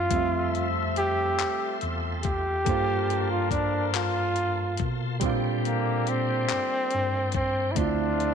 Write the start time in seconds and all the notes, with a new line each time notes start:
Already playing: F4 E5
0.10 F2 C3 G3 A3 C4 F4 A4 E5 C6, kick, closed hi-hat
0.16 E5
0.55 closed hi-hat
0.96 G4, closed hi-hat
1.39 clap, closed hi-hat
1.81 E2, closed hi-hat
2.23 G4, kick, closed hi-hat
2.64 G2 F3 A#3 D4 A4 A#4 A5 C6, kick, closed hi-hat
2.69 F4 C5
3.10 closed hi-hat
3.31 F4
3.51 D4, kick, closed hi-hat
3.94 F4, clap, closed hi-hat
4.36 closed hi-hat
4.77 B2, kick, closed hi-hat
5.20 A#2 D3 G3 C4 G4 D5 G5, kick, closed hi-hat
5.24 D4 F4
5.65 A#3, closed hi-hat
6.07 C4, closed hi-hat
6.49 clap, closed hi-hat
6.91 G2, closed hi-hat
7.32 C4, kick, closed hi-hat
7.72 A3 E4
7.76 D2 C3 F3 A3 C4 D4 E4 F4 E5, kick, closed hi-hat
7.81 F4
8.20 closed hi-hat